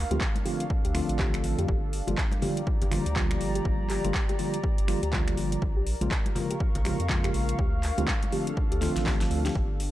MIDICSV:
0, 0, Header, 1, 6, 480
1, 0, Start_track
1, 0, Key_signature, -2, "minor"
1, 0, Tempo, 491803
1, 1644, Time_signature, 4, 2, 24, 8
1, 9672, End_track
2, 0, Start_track
2, 0, Title_t, "Ambient pad"
2, 0, Program_c, 0, 92
2, 0, Note_on_c, 0, 62, 77
2, 0, Note_on_c, 0, 77, 74
2, 104, Note_on_c, 0, 69, 76
2, 1643, Note_off_c, 0, 69, 0
2, 1646, Note_on_c, 0, 67, 88
2, 1793, Note_on_c, 0, 74, 89
2, 2088, Note_on_c, 0, 82, 83
2, 2535, Note_off_c, 0, 62, 0
2, 2625, Note_off_c, 0, 77, 0
2, 5483, Note_on_c, 0, 70, 80
2, 5485, Note_off_c, 0, 74, 0
2, 5786, Note_on_c, 0, 77, 89
2, 6121, Note_off_c, 0, 67, 0
2, 6150, Note_on_c, 0, 85, 90
2, 6262, Note_off_c, 0, 82, 0
2, 7404, Note_off_c, 0, 70, 0
2, 7404, Note_off_c, 0, 85, 0
2, 7404, Note_on_c, 0, 62, 79
2, 7524, Note_on_c, 0, 69, 84
2, 9323, Note_off_c, 0, 69, 0
2, 9324, Note_on_c, 0, 67, 73
2, 9672, Note_off_c, 0, 62, 0
2, 9672, Note_off_c, 0, 67, 0
2, 9672, Note_off_c, 0, 77, 0
2, 9672, End_track
3, 0, Start_track
3, 0, Title_t, "Synth arpeggio sound"
3, 0, Program_c, 1, 84
3, 108, Note_on_c, 1, 67, 75
3, 174, Note_off_c, 1, 67, 0
3, 444, Note_on_c, 1, 67, 77
3, 580, Note_off_c, 1, 67, 0
3, 827, Note_on_c, 1, 67, 74
3, 894, Note_off_c, 1, 67, 0
3, 1163, Note_on_c, 1, 67, 79
3, 1300, Note_off_c, 1, 67, 0
3, 1548, Note_on_c, 1, 67, 78
3, 1614, Note_off_c, 1, 67, 0
3, 1643, Note_on_c, 1, 67, 81
3, 1780, Note_off_c, 1, 67, 0
3, 2027, Note_on_c, 1, 67, 73
3, 2094, Note_off_c, 1, 67, 0
3, 2364, Note_on_c, 1, 67, 78
3, 2501, Note_off_c, 1, 67, 0
3, 2747, Note_on_c, 1, 67, 72
3, 2814, Note_off_c, 1, 67, 0
3, 3084, Note_on_c, 1, 67, 81
3, 3221, Note_off_c, 1, 67, 0
3, 3468, Note_on_c, 1, 67, 74
3, 3534, Note_off_c, 1, 67, 0
3, 3805, Note_on_c, 1, 67, 74
3, 3941, Note_off_c, 1, 67, 0
3, 4189, Note_on_c, 1, 67, 79
3, 4254, Note_off_c, 1, 67, 0
3, 4524, Note_on_c, 1, 67, 81
3, 4661, Note_off_c, 1, 67, 0
3, 4909, Note_on_c, 1, 67, 75
3, 4974, Note_off_c, 1, 67, 0
3, 5245, Note_on_c, 1, 67, 75
3, 5381, Note_off_c, 1, 67, 0
3, 5628, Note_on_c, 1, 67, 75
3, 5694, Note_off_c, 1, 67, 0
3, 5965, Note_on_c, 1, 67, 82
3, 6101, Note_off_c, 1, 67, 0
3, 6349, Note_on_c, 1, 67, 74
3, 6414, Note_off_c, 1, 67, 0
3, 6686, Note_on_c, 1, 67, 76
3, 6821, Note_off_c, 1, 67, 0
3, 7069, Note_on_c, 1, 67, 76
3, 7134, Note_off_c, 1, 67, 0
3, 7405, Note_on_c, 1, 67, 83
3, 7541, Note_off_c, 1, 67, 0
3, 7788, Note_on_c, 1, 67, 76
3, 7854, Note_off_c, 1, 67, 0
3, 8125, Note_on_c, 1, 67, 79
3, 8261, Note_off_c, 1, 67, 0
3, 8508, Note_on_c, 1, 67, 76
3, 8574, Note_off_c, 1, 67, 0
3, 8844, Note_on_c, 1, 67, 101
3, 8903, Note_off_c, 1, 67, 0
3, 9228, Note_on_c, 1, 67, 104
3, 9312, Note_off_c, 1, 67, 0
3, 9324, Note_on_c, 1, 67, 82
3, 9460, Note_off_c, 1, 67, 0
3, 9672, End_track
4, 0, Start_track
4, 0, Title_t, "Tine electric piano"
4, 0, Program_c, 2, 4
4, 106, Note_on_c, 2, 50, 83
4, 106, Note_on_c, 2, 53, 75
4, 106, Note_on_c, 2, 57, 75
4, 107, Note_on_c, 2, 60, 72
4, 107, Note_on_c, 2, 65, 90
4, 186, Note_off_c, 2, 50, 0
4, 187, Note_off_c, 2, 53, 0
4, 187, Note_off_c, 2, 57, 0
4, 187, Note_off_c, 2, 60, 0
4, 187, Note_off_c, 2, 65, 0
4, 443, Note_on_c, 2, 50, 67
4, 443, Note_on_c, 2, 53, 65
4, 444, Note_on_c, 2, 57, 64
4, 445, Note_on_c, 2, 60, 63
4, 445, Note_on_c, 2, 65, 80
4, 618, Note_off_c, 2, 50, 0
4, 619, Note_off_c, 2, 53, 0
4, 619, Note_off_c, 2, 57, 0
4, 619, Note_off_c, 2, 60, 0
4, 619, Note_off_c, 2, 65, 0
4, 922, Note_on_c, 2, 50, 92
4, 923, Note_on_c, 2, 53, 84
4, 923, Note_on_c, 2, 57, 83
4, 925, Note_on_c, 2, 60, 83
4, 926, Note_on_c, 2, 65, 102
4, 1631, Note_off_c, 2, 50, 0
4, 1632, Note_off_c, 2, 53, 0
4, 1632, Note_off_c, 2, 57, 0
4, 1633, Note_off_c, 2, 60, 0
4, 1633, Note_off_c, 2, 65, 0
4, 2026, Note_on_c, 2, 50, 82
4, 2027, Note_on_c, 2, 53, 75
4, 2027, Note_on_c, 2, 55, 78
4, 2027, Note_on_c, 2, 58, 73
4, 2028, Note_on_c, 2, 65, 88
4, 2107, Note_off_c, 2, 50, 0
4, 2107, Note_off_c, 2, 53, 0
4, 2107, Note_off_c, 2, 55, 0
4, 2107, Note_off_c, 2, 58, 0
4, 2108, Note_off_c, 2, 65, 0
4, 2362, Note_on_c, 2, 50, 71
4, 2363, Note_on_c, 2, 53, 65
4, 2363, Note_on_c, 2, 55, 63
4, 2363, Note_on_c, 2, 58, 63
4, 2364, Note_on_c, 2, 65, 75
4, 2538, Note_off_c, 2, 50, 0
4, 2538, Note_off_c, 2, 53, 0
4, 2538, Note_off_c, 2, 55, 0
4, 2539, Note_off_c, 2, 58, 0
4, 2539, Note_off_c, 2, 65, 0
4, 2843, Note_on_c, 2, 50, 79
4, 2843, Note_on_c, 2, 53, 75
4, 2844, Note_on_c, 2, 55, 75
4, 2844, Note_on_c, 2, 58, 76
4, 2845, Note_on_c, 2, 65, 92
4, 2962, Note_off_c, 2, 50, 0
4, 2963, Note_off_c, 2, 53, 0
4, 2963, Note_off_c, 2, 55, 0
4, 2963, Note_off_c, 2, 58, 0
4, 2963, Note_off_c, 2, 65, 0
4, 3082, Note_on_c, 2, 50, 78
4, 3083, Note_on_c, 2, 53, 75
4, 3084, Note_on_c, 2, 55, 77
4, 3085, Note_on_c, 2, 58, 75
4, 3086, Note_on_c, 2, 65, 90
4, 3912, Note_off_c, 2, 50, 0
4, 3913, Note_off_c, 2, 53, 0
4, 3913, Note_off_c, 2, 55, 0
4, 3914, Note_off_c, 2, 58, 0
4, 3914, Note_off_c, 2, 65, 0
4, 3946, Note_on_c, 2, 50, 79
4, 3947, Note_on_c, 2, 53, 73
4, 3947, Note_on_c, 2, 55, 73
4, 3948, Note_on_c, 2, 58, 76
4, 3948, Note_on_c, 2, 65, 93
4, 4027, Note_off_c, 2, 50, 0
4, 4027, Note_off_c, 2, 53, 0
4, 4027, Note_off_c, 2, 55, 0
4, 4027, Note_off_c, 2, 58, 0
4, 4027, Note_off_c, 2, 65, 0
4, 4283, Note_on_c, 2, 50, 68
4, 4283, Note_on_c, 2, 53, 67
4, 4283, Note_on_c, 2, 55, 64
4, 4284, Note_on_c, 2, 58, 64
4, 4284, Note_on_c, 2, 65, 76
4, 4458, Note_off_c, 2, 50, 0
4, 4458, Note_off_c, 2, 53, 0
4, 4459, Note_off_c, 2, 55, 0
4, 4459, Note_off_c, 2, 58, 0
4, 4459, Note_off_c, 2, 65, 0
4, 4763, Note_on_c, 2, 50, 79
4, 4764, Note_on_c, 2, 53, 73
4, 4764, Note_on_c, 2, 55, 75
4, 4765, Note_on_c, 2, 58, 74
4, 4765, Note_on_c, 2, 65, 91
4, 4882, Note_off_c, 2, 50, 0
4, 4883, Note_off_c, 2, 53, 0
4, 4883, Note_off_c, 2, 55, 0
4, 4883, Note_off_c, 2, 58, 0
4, 4884, Note_off_c, 2, 65, 0
4, 5003, Note_on_c, 2, 50, 81
4, 5004, Note_on_c, 2, 53, 74
4, 5004, Note_on_c, 2, 55, 77
4, 5004, Note_on_c, 2, 58, 73
4, 5005, Note_on_c, 2, 65, 89
4, 5472, Note_off_c, 2, 50, 0
4, 5472, Note_off_c, 2, 53, 0
4, 5472, Note_off_c, 2, 55, 0
4, 5473, Note_off_c, 2, 58, 0
4, 5473, Note_off_c, 2, 65, 0
4, 5867, Note_on_c, 2, 49, 84
4, 5868, Note_on_c, 2, 53, 76
4, 5868, Note_on_c, 2, 56, 78
4, 5869, Note_on_c, 2, 58, 74
4, 5869, Note_on_c, 2, 65, 94
4, 5947, Note_off_c, 2, 49, 0
4, 5947, Note_off_c, 2, 53, 0
4, 5948, Note_off_c, 2, 56, 0
4, 5948, Note_off_c, 2, 58, 0
4, 5948, Note_off_c, 2, 65, 0
4, 6204, Note_on_c, 2, 49, 69
4, 6204, Note_on_c, 2, 53, 64
4, 6204, Note_on_c, 2, 56, 62
4, 6205, Note_on_c, 2, 58, 63
4, 6206, Note_on_c, 2, 65, 79
4, 6379, Note_off_c, 2, 49, 0
4, 6379, Note_off_c, 2, 53, 0
4, 6379, Note_off_c, 2, 56, 0
4, 6379, Note_off_c, 2, 58, 0
4, 6380, Note_off_c, 2, 65, 0
4, 6683, Note_on_c, 2, 49, 81
4, 6684, Note_on_c, 2, 53, 75
4, 6684, Note_on_c, 2, 56, 73
4, 6684, Note_on_c, 2, 58, 72
4, 6685, Note_on_c, 2, 65, 90
4, 6802, Note_off_c, 2, 49, 0
4, 6803, Note_off_c, 2, 53, 0
4, 6803, Note_off_c, 2, 56, 0
4, 6803, Note_off_c, 2, 58, 0
4, 6803, Note_off_c, 2, 65, 0
4, 6923, Note_on_c, 2, 49, 82
4, 6923, Note_on_c, 2, 53, 76
4, 6924, Note_on_c, 2, 56, 74
4, 6925, Note_on_c, 2, 58, 75
4, 6925, Note_on_c, 2, 65, 90
4, 7392, Note_off_c, 2, 49, 0
4, 7392, Note_off_c, 2, 53, 0
4, 7393, Note_off_c, 2, 56, 0
4, 7393, Note_off_c, 2, 58, 0
4, 7393, Note_off_c, 2, 65, 0
4, 7786, Note_on_c, 2, 50, 82
4, 7787, Note_on_c, 2, 53, 78
4, 7787, Note_on_c, 2, 57, 74
4, 7788, Note_on_c, 2, 60, 78
4, 7788, Note_on_c, 2, 65, 92
4, 7867, Note_off_c, 2, 50, 0
4, 7867, Note_off_c, 2, 53, 0
4, 7867, Note_off_c, 2, 57, 0
4, 7867, Note_off_c, 2, 60, 0
4, 7868, Note_off_c, 2, 65, 0
4, 8123, Note_on_c, 2, 50, 68
4, 8123, Note_on_c, 2, 53, 65
4, 8124, Note_on_c, 2, 57, 65
4, 8124, Note_on_c, 2, 60, 64
4, 8124, Note_on_c, 2, 65, 75
4, 8298, Note_off_c, 2, 50, 0
4, 8298, Note_off_c, 2, 53, 0
4, 8299, Note_off_c, 2, 57, 0
4, 8299, Note_off_c, 2, 60, 0
4, 8299, Note_off_c, 2, 65, 0
4, 8601, Note_on_c, 2, 50, 94
4, 8602, Note_on_c, 2, 53, 85
4, 8603, Note_on_c, 2, 57, 87
4, 8604, Note_on_c, 2, 60, 86
4, 8605, Note_on_c, 2, 65, 101
4, 9311, Note_off_c, 2, 50, 0
4, 9312, Note_off_c, 2, 53, 0
4, 9312, Note_off_c, 2, 57, 0
4, 9313, Note_off_c, 2, 60, 0
4, 9313, Note_off_c, 2, 65, 0
4, 9672, End_track
5, 0, Start_track
5, 0, Title_t, "Analog synth bass"
5, 0, Program_c, 3, 38
5, 106, Note_on_c, 3, 38, 97
5, 179, Note_off_c, 3, 38, 0
5, 826, Note_on_c, 3, 38, 81
5, 994, Note_off_c, 3, 38, 0
5, 1067, Note_on_c, 3, 33, 78
5, 1301, Note_off_c, 3, 33, 0
5, 1307, Note_on_c, 3, 33, 80
5, 1379, Note_off_c, 3, 33, 0
5, 1403, Note_on_c, 3, 33, 98
5, 1511, Note_off_c, 3, 33, 0
5, 1547, Note_on_c, 3, 41, 105
5, 1619, Note_off_c, 3, 41, 0
5, 1644, Note_on_c, 3, 31, 97
5, 1969, Note_off_c, 3, 31, 0
5, 2027, Note_on_c, 3, 31, 94
5, 2099, Note_off_c, 3, 31, 0
5, 2747, Note_on_c, 3, 31, 77
5, 2914, Note_off_c, 3, 31, 0
5, 2987, Note_on_c, 3, 38, 80
5, 3284, Note_off_c, 3, 38, 0
5, 3323, Note_on_c, 3, 31, 92
5, 3515, Note_off_c, 3, 31, 0
5, 3564, Note_on_c, 3, 31, 93
5, 3889, Note_off_c, 3, 31, 0
5, 3947, Note_on_c, 3, 31, 96
5, 4019, Note_off_c, 3, 31, 0
5, 4669, Note_on_c, 3, 31, 78
5, 4835, Note_off_c, 3, 31, 0
5, 4908, Note_on_c, 3, 38, 78
5, 5205, Note_off_c, 3, 38, 0
5, 5244, Note_on_c, 3, 31, 91
5, 5435, Note_off_c, 3, 31, 0
5, 5485, Note_on_c, 3, 34, 95
5, 5809, Note_off_c, 3, 34, 0
5, 5866, Note_on_c, 3, 34, 96
5, 5939, Note_off_c, 3, 34, 0
5, 6587, Note_on_c, 3, 34, 80
5, 6754, Note_off_c, 3, 34, 0
5, 6827, Note_on_c, 3, 41, 77
5, 7125, Note_off_c, 3, 41, 0
5, 7164, Note_on_c, 3, 34, 93
5, 7355, Note_off_c, 3, 34, 0
5, 7405, Note_on_c, 3, 38, 92
5, 7730, Note_off_c, 3, 38, 0
5, 7787, Note_on_c, 3, 38, 99
5, 7859, Note_off_c, 3, 38, 0
5, 8507, Note_on_c, 3, 38, 78
5, 8674, Note_off_c, 3, 38, 0
5, 8748, Note_on_c, 3, 33, 80
5, 9045, Note_off_c, 3, 33, 0
5, 9083, Note_on_c, 3, 38, 91
5, 9274, Note_off_c, 3, 38, 0
5, 9325, Note_on_c, 3, 31, 94
5, 9649, Note_off_c, 3, 31, 0
5, 9672, End_track
6, 0, Start_track
6, 0, Title_t, "Drums"
6, 107, Note_on_c, 9, 42, 59
6, 108, Note_on_c, 9, 63, 62
6, 204, Note_on_c, 9, 36, 118
6, 204, Note_on_c, 9, 39, 113
6, 205, Note_off_c, 9, 42, 0
6, 206, Note_off_c, 9, 63, 0
6, 302, Note_off_c, 9, 36, 0
6, 302, Note_off_c, 9, 39, 0
6, 346, Note_on_c, 9, 63, 63
6, 349, Note_on_c, 9, 42, 34
6, 444, Note_off_c, 9, 63, 0
6, 445, Note_on_c, 9, 46, 96
6, 446, Note_off_c, 9, 42, 0
6, 542, Note_off_c, 9, 46, 0
6, 588, Note_on_c, 9, 42, 59
6, 684, Note_on_c, 9, 36, 118
6, 686, Note_off_c, 9, 42, 0
6, 782, Note_off_c, 9, 36, 0
6, 828, Note_on_c, 9, 42, 47
6, 924, Note_on_c, 9, 26, 59
6, 924, Note_on_c, 9, 46, 102
6, 925, Note_off_c, 9, 42, 0
6, 1021, Note_off_c, 9, 26, 0
6, 1021, Note_off_c, 9, 46, 0
6, 1067, Note_on_c, 9, 42, 58
6, 1163, Note_on_c, 9, 39, 108
6, 1164, Note_on_c, 9, 36, 118
6, 1165, Note_off_c, 9, 42, 0
6, 1261, Note_off_c, 9, 39, 0
6, 1262, Note_off_c, 9, 36, 0
6, 1308, Note_on_c, 9, 26, 65
6, 1308, Note_on_c, 9, 42, 46
6, 1403, Note_on_c, 9, 46, 91
6, 1405, Note_off_c, 9, 26, 0
6, 1405, Note_off_c, 9, 42, 0
6, 1501, Note_off_c, 9, 46, 0
6, 1548, Note_on_c, 9, 42, 57
6, 1644, Note_on_c, 9, 36, 117
6, 1645, Note_off_c, 9, 42, 0
6, 1742, Note_off_c, 9, 36, 0
6, 1884, Note_on_c, 9, 46, 104
6, 1982, Note_off_c, 9, 46, 0
6, 2024, Note_on_c, 9, 63, 64
6, 2028, Note_on_c, 9, 42, 62
6, 2121, Note_off_c, 9, 63, 0
6, 2124, Note_on_c, 9, 36, 116
6, 2125, Note_on_c, 9, 39, 114
6, 2126, Note_off_c, 9, 42, 0
6, 2222, Note_off_c, 9, 36, 0
6, 2223, Note_off_c, 9, 39, 0
6, 2260, Note_on_c, 9, 63, 60
6, 2269, Note_on_c, 9, 42, 34
6, 2357, Note_off_c, 9, 63, 0
6, 2361, Note_on_c, 9, 64, 73
6, 2364, Note_on_c, 9, 46, 92
6, 2366, Note_off_c, 9, 42, 0
6, 2459, Note_off_c, 9, 64, 0
6, 2462, Note_off_c, 9, 46, 0
6, 2509, Note_on_c, 9, 42, 62
6, 2604, Note_on_c, 9, 36, 117
6, 2607, Note_off_c, 9, 42, 0
6, 2702, Note_off_c, 9, 36, 0
6, 2749, Note_on_c, 9, 42, 48
6, 2753, Note_on_c, 9, 64, 71
6, 2845, Note_on_c, 9, 26, 60
6, 2845, Note_on_c, 9, 46, 105
6, 2846, Note_off_c, 9, 42, 0
6, 2846, Note_off_c, 9, 64, 0
6, 2846, Note_on_c, 9, 64, 80
6, 2943, Note_off_c, 9, 26, 0
6, 2943, Note_off_c, 9, 46, 0
6, 2943, Note_off_c, 9, 64, 0
6, 2989, Note_on_c, 9, 42, 63
6, 3085, Note_on_c, 9, 36, 115
6, 3086, Note_off_c, 9, 42, 0
6, 3086, Note_on_c, 9, 39, 107
6, 3182, Note_off_c, 9, 36, 0
6, 3183, Note_off_c, 9, 39, 0
6, 3228, Note_on_c, 9, 26, 68
6, 3228, Note_on_c, 9, 42, 48
6, 3325, Note_on_c, 9, 46, 88
6, 3326, Note_off_c, 9, 26, 0
6, 3326, Note_off_c, 9, 42, 0
6, 3422, Note_off_c, 9, 46, 0
6, 3469, Note_on_c, 9, 42, 59
6, 3564, Note_on_c, 9, 36, 115
6, 3566, Note_off_c, 9, 42, 0
6, 3662, Note_off_c, 9, 36, 0
6, 3803, Note_on_c, 9, 46, 99
6, 3805, Note_on_c, 9, 39, 57
6, 3901, Note_off_c, 9, 46, 0
6, 3902, Note_off_c, 9, 39, 0
6, 3946, Note_on_c, 9, 63, 59
6, 3948, Note_on_c, 9, 42, 64
6, 4044, Note_off_c, 9, 63, 0
6, 4044, Note_on_c, 9, 36, 111
6, 4045, Note_off_c, 9, 42, 0
6, 4045, Note_on_c, 9, 39, 113
6, 4142, Note_off_c, 9, 36, 0
6, 4143, Note_off_c, 9, 39, 0
6, 4189, Note_on_c, 9, 42, 35
6, 4191, Note_on_c, 9, 63, 55
6, 4284, Note_on_c, 9, 46, 87
6, 4286, Note_off_c, 9, 42, 0
6, 4288, Note_off_c, 9, 63, 0
6, 4382, Note_off_c, 9, 46, 0
6, 4428, Note_on_c, 9, 42, 63
6, 4524, Note_on_c, 9, 36, 117
6, 4526, Note_off_c, 9, 42, 0
6, 4622, Note_off_c, 9, 36, 0
6, 4668, Note_on_c, 9, 42, 47
6, 4765, Note_on_c, 9, 26, 64
6, 4765, Note_on_c, 9, 46, 95
6, 4766, Note_off_c, 9, 42, 0
6, 4862, Note_off_c, 9, 26, 0
6, 4862, Note_off_c, 9, 46, 0
6, 4909, Note_on_c, 9, 42, 62
6, 5005, Note_on_c, 9, 36, 111
6, 5006, Note_on_c, 9, 39, 108
6, 5007, Note_off_c, 9, 42, 0
6, 5102, Note_off_c, 9, 36, 0
6, 5104, Note_off_c, 9, 39, 0
6, 5150, Note_on_c, 9, 26, 65
6, 5150, Note_on_c, 9, 42, 51
6, 5246, Note_on_c, 9, 46, 86
6, 5247, Note_off_c, 9, 26, 0
6, 5247, Note_off_c, 9, 42, 0
6, 5343, Note_off_c, 9, 46, 0
6, 5390, Note_on_c, 9, 42, 62
6, 5485, Note_on_c, 9, 36, 110
6, 5487, Note_off_c, 9, 42, 0
6, 5582, Note_off_c, 9, 36, 0
6, 5725, Note_on_c, 9, 46, 98
6, 5822, Note_off_c, 9, 46, 0
6, 5868, Note_on_c, 9, 63, 58
6, 5869, Note_on_c, 9, 42, 66
6, 5965, Note_off_c, 9, 63, 0
6, 5965, Note_on_c, 9, 36, 113
6, 5966, Note_off_c, 9, 42, 0
6, 5967, Note_on_c, 9, 39, 115
6, 6062, Note_off_c, 9, 36, 0
6, 6064, Note_off_c, 9, 39, 0
6, 6107, Note_on_c, 9, 63, 53
6, 6109, Note_on_c, 9, 42, 38
6, 6202, Note_on_c, 9, 64, 76
6, 6205, Note_off_c, 9, 63, 0
6, 6206, Note_on_c, 9, 46, 89
6, 6207, Note_off_c, 9, 42, 0
6, 6299, Note_off_c, 9, 64, 0
6, 6303, Note_off_c, 9, 46, 0
6, 6349, Note_on_c, 9, 42, 68
6, 6445, Note_on_c, 9, 36, 112
6, 6447, Note_off_c, 9, 42, 0
6, 6542, Note_off_c, 9, 36, 0
6, 6588, Note_on_c, 9, 64, 76
6, 6589, Note_on_c, 9, 42, 50
6, 6686, Note_off_c, 9, 64, 0
6, 6686, Note_on_c, 9, 26, 61
6, 6686, Note_on_c, 9, 46, 94
6, 6687, Note_off_c, 9, 42, 0
6, 6687, Note_on_c, 9, 64, 84
6, 6784, Note_off_c, 9, 26, 0
6, 6784, Note_off_c, 9, 46, 0
6, 6784, Note_off_c, 9, 64, 0
6, 6830, Note_on_c, 9, 42, 65
6, 6925, Note_on_c, 9, 36, 112
6, 6926, Note_on_c, 9, 39, 109
6, 6928, Note_off_c, 9, 42, 0
6, 7022, Note_off_c, 9, 36, 0
6, 7024, Note_off_c, 9, 39, 0
6, 7069, Note_on_c, 9, 26, 65
6, 7069, Note_on_c, 9, 42, 52
6, 7165, Note_on_c, 9, 46, 89
6, 7167, Note_off_c, 9, 26, 0
6, 7167, Note_off_c, 9, 42, 0
6, 7263, Note_off_c, 9, 46, 0
6, 7309, Note_on_c, 9, 42, 64
6, 7405, Note_on_c, 9, 36, 114
6, 7406, Note_off_c, 9, 42, 0
6, 7502, Note_off_c, 9, 36, 0
6, 7645, Note_on_c, 9, 46, 98
6, 7646, Note_on_c, 9, 39, 58
6, 7742, Note_off_c, 9, 46, 0
6, 7743, Note_off_c, 9, 39, 0
6, 7785, Note_on_c, 9, 63, 61
6, 7788, Note_on_c, 9, 42, 69
6, 7883, Note_off_c, 9, 63, 0
6, 7884, Note_on_c, 9, 39, 122
6, 7885, Note_on_c, 9, 36, 112
6, 7886, Note_off_c, 9, 42, 0
6, 7982, Note_off_c, 9, 36, 0
6, 7982, Note_off_c, 9, 39, 0
6, 8028, Note_on_c, 9, 42, 37
6, 8033, Note_on_c, 9, 63, 53
6, 8124, Note_on_c, 9, 46, 88
6, 8126, Note_off_c, 9, 42, 0
6, 8131, Note_off_c, 9, 63, 0
6, 8222, Note_off_c, 9, 46, 0
6, 8268, Note_on_c, 9, 42, 70
6, 8365, Note_off_c, 9, 42, 0
6, 8365, Note_on_c, 9, 36, 113
6, 8462, Note_off_c, 9, 36, 0
6, 8509, Note_on_c, 9, 42, 52
6, 8605, Note_on_c, 9, 38, 58
6, 8605, Note_on_c, 9, 46, 99
6, 8607, Note_off_c, 9, 42, 0
6, 8703, Note_off_c, 9, 38, 0
6, 8703, Note_off_c, 9, 46, 0
6, 8749, Note_on_c, 9, 38, 58
6, 8749, Note_on_c, 9, 42, 67
6, 8844, Note_off_c, 9, 38, 0
6, 8844, Note_on_c, 9, 38, 73
6, 8845, Note_on_c, 9, 36, 114
6, 8845, Note_on_c, 9, 39, 113
6, 8847, Note_off_c, 9, 42, 0
6, 8942, Note_off_c, 9, 36, 0
6, 8942, Note_off_c, 9, 38, 0
6, 8943, Note_off_c, 9, 39, 0
6, 8989, Note_on_c, 9, 38, 70
6, 8989, Note_on_c, 9, 42, 54
6, 9085, Note_on_c, 9, 46, 89
6, 9086, Note_off_c, 9, 38, 0
6, 9086, Note_off_c, 9, 42, 0
6, 9183, Note_off_c, 9, 46, 0
6, 9229, Note_on_c, 9, 38, 80
6, 9229, Note_on_c, 9, 42, 66
6, 9324, Note_on_c, 9, 36, 116
6, 9327, Note_off_c, 9, 38, 0
6, 9327, Note_off_c, 9, 42, 0
6, 9422, Note_off_c, 9, 36, 0
6, 9564, Note_on_c, 9, 46, 104
6, 9662, Note_off_c, 9, 46, 0
6, 9672, End_track
0, 0, End_of_file